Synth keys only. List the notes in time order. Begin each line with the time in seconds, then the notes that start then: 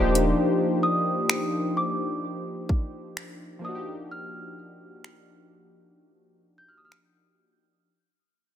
Already playing: F3 A#3 D4 D#4 G4 C5
3.59 F3 A#3
3.64 D4 D#4
3.68 F#4
3.75 G4